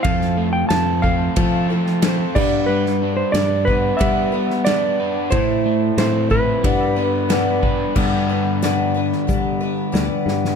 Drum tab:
CC |--------------x-|----------------|----------------|x---------------|
RD |b---b---b---b---|----b---b---b---|b---b---b---b---|----------------|
HH |----------------|----------------|----------------|----x---x---x---|
SD |-o--o------oo---|-o--o------oo---|----o-------o---|----o--o----o-oo|
BD |o-----o-o-----o-|------o-o-------|o-----o-o-----o-|o-------o-------|